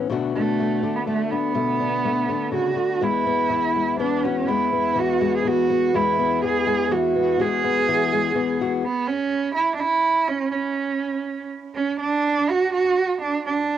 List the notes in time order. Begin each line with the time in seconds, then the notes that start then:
Already playing: B3
0.10 B2 D3 A3 D4 F#4
0.35 A3 D4
0.60 A3
0.83 D3 D4
0.96 B3
1.07 A3
1.31 B3 D4
1.55 B2 A3
1.80 D4
2.05 A3
2.29 D3 D4
2.52 C#3 F#4
2.76 D3
3.01 E2 G#3 B3 E4
3.27 B3
3.50 E3
3.75 G#3
3.99 E3 B3 D4
4.23 C#4 F#4
4.47 E2 G#3 B3 E4
4.73 B3
4.96 E3 F#4
5.21 G#3
5.36 G#4
5.45 E3 B3 F#4
5.70 B3
5.94 E2 G#3 B3 E4
6.19 B3
6.44 E3 G#4
6.67 G#3
6.91 E3 B3 F#4
7.16 B3
7.39 E2 G#3 B3 F#4 G#4
7.64 B3
7.88 E3
8.13 G#3
8.35 E3 B3
8.61 F#4
8.85 B3
9.07 C#4
9.55 E4
9.75 D4
9.80 E4
10.28 C#4
10.51 C#4
11.75 C#4
12.00 D4
12.50 F#4
12.73 F#4
13.21 D4
13.46 D4